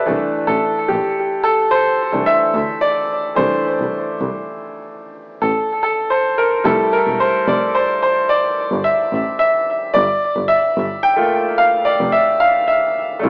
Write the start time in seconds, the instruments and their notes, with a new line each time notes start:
Already playing: grand piano B4 E5
0.06 double bass C2, grand piano E3 A3 D4
0.47 double bass A1, grand piano A4
0.88 double bass A#1, grand piano G4
1.44 grand piano A4
1.71 grand piano C5
2.12 double bass C2, grand piano E3 A3 D4
2.26 grand piano E5
2.54 double bass D2
2.81 grand piano D5
3.35 double bass C2, grand piano E3 A3 D4 C5
3.78 double bass C2
4.19 double bass C2
5.42 double bass A1, grand piano A4
5.83 grand piano A4
6.10 grand piano C5
6.38 grand piano A#4
6.64 double bass F1, grand piano G3 A3 E4 A4
6.93 grand piano A#4
7.07 double bass E1
7.20 grand piano C5
7.48 double bass F1, grand piano D5
7.75 grand piano C5
8.02 grand piano C5
8.29 grand piano D5
8.72 double bass G1
8.84 grand piano E5
9.13 double bass A1
9.39 grand piano E5
9.94 double bass G1, grand piano D5
10.36 double bass G1
10.48 grand piano E5
10.77 double bass G1
11.03 grand piano G5
11.16 grand piano A3 A#3 F4
11.58 grand piano F5
11.85 grand piano D5
12.01 double bass F1
12.12 grand piano E5
12.40 grand piano F5
12.68 grand piano E5
13.19 grand piano A3 D4
13.23 double bass C2, grand piano E4 F4